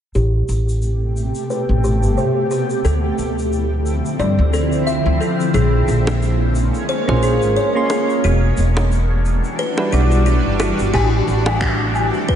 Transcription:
0.15 A1 B2 C3 A3 G4, shaker
0.49 A1, shaker
0.69 shaker
0.82 shaker
1.17 shaker
1.35 shaker
1.50 B4, shaker
1.69 A1
1.84 G4, shaker
2.03 G1, shaker
2.17 C5, shaker
2.51 G4, shaker
2.70 shaker
2.85 D2 D3 F3 C4 E4 A4, shaker
3.18 D2, shaker
3.39 shaker
3.53 shaker
3.86 shaker
4.06 shaker
4.19 G2 D5, shaker
4.39 D2
4.53 A4, shaker
4.72 shaker
4.87 E5, shaker
5.06 D2
5.21 A4, shaker
5.40 shaker
5.54 A#1 G#3 A#3 C#4 G#4, shaker
5.88 A#1, shaker
6.07 high bongo, shaker
6.22 shaker
6.55 shaker
6.74 shaker
6.89 C5, shaker
7.07 A#1 A#3 C#4 F4 G#4 C5, high bongo
7.23 G#4, shaker
7.42 G#1, shaker
7.56 C#5, shaker
7.75 A#3 C#4 F4 G#4 C6
7.90 G#4, high bongo, shaker
8.10 shaker
8.24 E1 E3 G3 D4 F#4, shaker
8.57 E1, shaker
8.77 high bongo, shaker
8.92 shaker
9.25 shaker
9.44 shaker
9.59 B4, shaker
9.77 G3 D4 E4 F#4 B4, high bongo
9.91 B1 G3 D4 E4 F#4 D5, shaker
10.11 shaker
10.26 F#4, shaker
10.45 G1
10.60 F#4, high bongo, shaker
10.79 G1, shaker
10.94 A1 C3 A3 G4, kick, crash, low woodblock, shaker
11.27 A1, shaker
11.46 high bongo, low woodblock, shaker
11.61 finger snap, kick, shaker
11.95 low woodblock, shaker
12.14 shaker
12.29 B4, kick, shaker

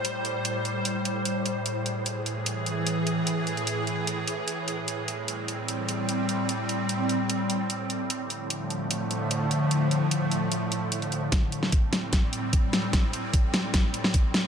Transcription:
Already playing: A2 G3 C5
0.05 closed hi-hat
0.25 closed hi-hat
0.45 closed hi-hat
0.65 closed hi-hat
0.85 closed hi-hat
1.05 closed hi-hat
1.25 closed hi-hat
1.46 closed hi-hat
1.66 E3 G#4, closed hi-hat
1.86 closed hi-hat
2.06 closed hi-hat
2.26 closed hi-hat
2.46 closed hi-hat
2.66 closed hi-hat
2.87 closed hi-hat
3.07 closed hi-hat
3.27 closed hi-hat
3.47 closed hi-hat
3.57 closed hi-hat
3.67 closed hi-hat
3.87 closed hi-hat
4.07 closed hi-hat
4.27 closed hi-hat
4.48 closed hi-hat
4.68 closed hi-hat
4.88 G3 C4, closed hi-hat
5.08 closed hi-hat
5.28 closed hi-hat
5.48 closed hi-hat
5.68 closed hi-hat
5.89 closed hi-hat
6.09 closed hi-hat
6.29 closed hi-hat
6.49 closed hi-hat
6.69 closed hi-hat
6.89 closed hi-hat
7.09 closed hi-hat
7.30 closed hi-hat
7.50 closed hi-hat
7.70 closed hi-hat
7.90 closed hi-hat
8.10 A2 D3 F3 A3, closed hi-hat
8.30 closed hi-hat
8.50 closed hi-hat
8.70 closed hi-hat
8.91 closed hi-hat
9.11 closed hi-hat
9.31 closed hi-hat
9.51 closed hi-hat
9.71 closed hi-hat
9.91 closed hi-hat
10.11 closed hi-hat
10.31 closed hi-hat
10.52 closed hi-hat
10.72 closed hi-hat
10.92 closed hi-hat
11.02 closed hi-hat
11.12 closed hi-hat
11.32 A2 G3 C4, kick, snare, closed hi-hat
11.52 closed hi-hat
11.63 snare
11.72 kick, closed hi-hat
11.93 snare, closed hi-hat
12.13 kick, snare, closed hi-hat
12.33 closed hi-hat
12.53 kick, closed hi-hat
12.73 snare, closed hi-hat
12.93 kick, snare, closed hi-hat
13.13 closed hi-hat
13.33 kick, closed hi-hat
13.54 snare, closed hi-hat
13.74 kick, snare, closed hi-hat
13.94 closed hi-hat
14.04 snare
14.14 kick, closed hi-hat
14.34 snare, closed hi-hat

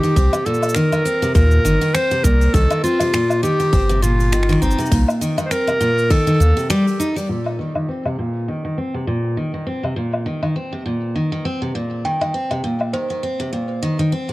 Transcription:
Already playing: G4
0.03 D#3, open hi-hat, cabasa
0.16 C2 C4, kick, open hi-hat, cabasa
0.33 C3, cabasa, low woodblock
0.46 A#2 A4, cabasa
0.54 cabasa
0.62 open hi-hat, cabasa, low woodblock
0.69 cabasa
0.75 D#3 A#4, finger snap, open hi-hat, cabasa
0.92 D#3, cabasa, low woodblock
1.05 C4, open hi-hat, cabasa
1.22 C3, open hi-hat, cabasa
1.34 D#2 A#2 A#4, kick, open hi-hat, cabasa
1.51 cabasa
1.65 G1 D#3, open hi-hat, cabasa
1.81 D#3, open hi-hat, cabasa
1.94 C4 C5, finger snap, open hi-hat, cabasa
2.11 C3, open hi-hat, cabasa
2.24 C2 A#2 A#4, kick, cabasa
2.41 open hi-hat, cabasa
2.54 C2 D#3 A4, kick, open hi-hat, cabasa
2.70 D#3, cabasa, low woodblock
2.84 C4 F4, cabasa
3.00 C3, open hi-hat, cabasa, low woodblock
3.13 A#2, finger snap, open hi-hat, cabasa
3.30 cabasa, low woodblock
3.43 D#3 G4, open hi-hat, cabasa
3.60 D#3, open hi-hat, cabasa
3.73 G1 C4, kick, open hi-hat, cabasa
3.89 C3, cabasa
4.02 A#2 F4, open hi-hat, cabasa
4.20 open hi-hat, cabasa
4.32 D#3, finger snap, open hi-hat, cabasa
4.43 finger snap
4.49 D#3, finger snap, open hi-hat, cabasa
4.62 G1 C4 D#4, kick, cabasa
4.71 cabasa
4.78 C3, open hi-hat, cabasa
4.86 cabasa
4.91 C2 A#2, kick, open hi-hat, cabasa
5.08 cabasa, low woodblock
5.21 D#3, open hi-hat, cabasa
5.38 D#3, cabasa, low woodblock
5.45 C5
5.51 C4 A#4, finger snap, open hi-hat, cabasa
5.67 C3, cabasa, low woodblock
5.80 A#2, open hi-hat, cabasa
5.97 open hi-hat, cabasa
6.10 D#3 A4, kick, open hi-hat, cabasa
6.27 D#3, cabasa
6.34 open hi-hat
6.40 D#2 A#3, cabasa
6.57 C3, open hi-hat, cabasa
6.70 G3 G4, finger snap, open hi-hat, cabasa
6.87 open hi-hat, cabasa
7.00 D#4, cabasa
7.16 G3, open hi-hat, cabasa
7.29 A#2
7.46 low woodblock
7.59 D#3
7.75 D#3, low woodblock
7.89 C4
8.05 C3, low woodblock
8.19 A#2
8.48 D#3
8.65 D#3
8.78 C4
8.94 C3
9.07 A#2
9.37 D#3
9.54 D#3
9.67 C4
9.83 C3, low woodblock
9.96 A#2
10.13 low woodblock
10.26 D#3
10.43 D#3, low woodblock
10.56 C4
10.73 C3
10.86 A#2
11.16 D#3
11.32 D#3
11.45 C4
11.62 C3
11.75 A#2
12.05 D#3 G5
12.21 D#3, low woodblock
12.34 C4
12.51 C3, low woodblock
12.64 A#2
12.81 low woodblock
12.93 D#3 C5
13.10 D#3
13.23 C4
13.40 C3
13.53 A#2
13.83 D#3
13.99 D#3
14.12 C4
14.29 C3

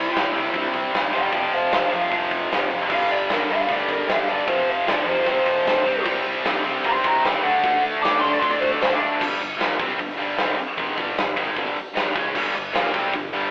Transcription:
Already playing: C3 G3 C4 E4
0.11 C3 G3 C4
0.16 C2, snare, open hi-hat
0.32 C3 G3 C4, open hi-hat
0.37 C3
0.46 snare
0.52 G2 C3 G3 C4, kick, open hi-hat
0.74 C2, kick, open hi-hat
0.91 C3 G3 C4, open hi-hat
0.95 C2, snare
1.12 F1 F2 C3 F3 D5 G5, open hi-hat
1.32 F1 F2 C3 F3 D5, kick, open hi-hat
1.36 G5
1.52 F1 C5 F5, open hi-hat
1.71 F1 F2 C3 F3 C5, snare, open hi-hat
1.75 F5
1.91 F2 C3 F3 F5, open hi-hat
2.09 C2 F2 C3 F3, kick
2.13 open hi-hat
2.31 F1, kick, open hi-hat
2.50 F1 F2 C3 F3, snare, open hi-hat
2.69 F1 F2 C3 F3, open hi-hat
2.90 G1 G2 D3 G3 F5, kick, crash
3.10 G1 D5, open hi-hat
3.28 G1 G2 D3 G3, snare, open hi-hat
3.33 A#4
3.49 G2 D3 G3 F5, open hi-hat
3.60 snare
3.67 D2 G2 D3 G3, kick, open hi-hat
3.73 D5
3.89 G1 A#4, kick, open hi-hat
4.07 G1 G2 D3 G3 F5, snare, open hi-hat
4.28 G1 G2 D3 G3 D5, open hi-hat
4.47 F1 F2 C3 F3 C5, kick, open hi-hat
4.66 F1, open hi-hat
4.70 F5
4.84 F1 F2 C3 F3, snare, open hi-hat
4.88 D5
5.05 F2 C3 F3 C5, open hi-hat
5.26 C2 F2 C3 F3 C5, kick, open hi-hat
5.46 F1, kick, open hi-hat
5.65 D2 F2 C3 F3, snare, open hi-hat
5.85 C2 C3 G3 C4, open hi-hat
6.06 C2 C3 G3 C4, kick, crash
6.25 C2, open hi-hat
6.44 C2 C3 G3 C4, snare, open hi-hat
6.64 C3 G3 C4, open hi-hat
6.84 G2 C3 G3 C4 G5 C6, kick, open hi-hat
6.96 snare
7.04 C2 G5 A#5, kick, open hi-hat
7.23 C#2 C3 G3 C4 D5 G5, snare, open hi-hat
7.43 D2 D3 A3 D4 F#5, open hi-hat
7.62 D2 D3 A3 D4, kick, open hi-hat
7.84 D2, open hi-hat
8.02 D2 D3 A3 D4 D6, snare, open hi-hat
8.19 D3 A3 D4 C6
8.23 D3 D4, open hi-hat
8.31 D5, snare
8.39 A2 D3 A3 D4 C6, kick, open hi-hat
8.51 D5
8.60 D2 C5, kick, open hi-hat
8.72 D5
8.81 D2 D3 A3 D4 C5, snare, open hi-hat
8.93 D4
9.01 D2 D3 A3 D4, open hi-hat
9.20 G1 G2 D3 G3, kick, crash
9.41 G1 G2 D3, open hi-hat
9.59 A#1 A#2 F3 A#3, snare, open hi-hat
9.78 C2 C3 G3 C4, kick, open hi-hat
9.89 snare
9.98 G1 G2 D3, kick, open hi-hat
10.10 snare
10.16 G1 G2 D3 G3, open hi-hat
10.37 C2 C3 G3 C4, snare, open hi-hat
10.56 muted overdriven electric guitar stroke, muted distorted electric guitar stroke, muted fingered electric bass stroke, open hi-hat
10.77 G#1 G#2 D#3 G#3, kick, open hi-hat
10.97 G1 G2 D3 G3, kick, open hi-hat
11.17 G1 G2 D3, snare, open hi-hat
11.37 G#1 G#2 D#3 G#3, kick, open hi-hat
11.56 G1 G2 D3 G3, kick, open hi-hat
11.75 muted distorted electric guitar stroke, muted overdriven electric guitar stroke, open hi-hat
11.94 G#1 G#2 D#3 G#3, snare, open hi-hat
12.15 C#2 C#3 G#3 C#4, kick, open hi-hat
12.35 G1 G2 D3 G3, kick, crash
12.55 G1 G2 D3, open hi-hat
12.73 A#1 A#2 F3 A#3, snare, open hi-hat
12.92 C2 C3 G3 C4, kick, open hi-hat
13.13 G1 G2 D3, kick, open hi-hat
13.33 G1 G2 D3 G3, open hi-hat

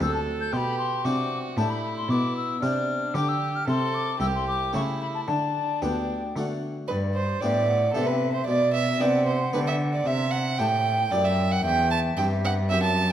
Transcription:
0.00 D2 C4 G4 A4 E6
0.14 A5
0.41 G6
0.52 B2 G4 C6
0.56 B5
0.78 C6
1.04 C3 D4 F#4 G4 D6
1.57 A2 D4 E4 G4 A5
1.70 B5
1.97 C6
2.08 B2 D6
2.37 E6
2.62 C3 D4 G4 F6
3.14 D3 D4 G4 D6
3.29 E6
3.55 F6
3.67 C3 A4 C6
3.94 D6
4.20 C2 E4 G4 E6
4.35 C6
4.48 D6
4.73 C#3 A3 E4 G4 C#6
5.01 B5
5.15 A5
5.27 D3 D4 A5
5.82 D2 B3 D4 G4 G5
6.36 D3 A3 D4 F#4
6.88 G2 B4 D5
7.14 C5
7.40 A2 B3 D4 G4 D5 G5
7.69 F#5
7.93 C3 B3 D4 G4 A4 E5
8.06 B4
8.33 C5
8.46 B2 D5
8.73 E5
9.00 C3 B3 D4 G4 D5 F#5
9.26 C5
9.53 D3 B3 D4 G4 B4
9.67 E5
9.93 D5
10.06 C3 E5
10.31 F#5
10.58 A2 E4 G4 G5 A5
10.85 G5
11.11 F#2 E4 G4 D5
11.25 E5
11.51 F#5
11.64 E2 E5 G5
11.91 A5
12.17 G2 C4 G4 G5
12.45 F#5
12.69 F#2 C4 G4 E5
12.83 A5

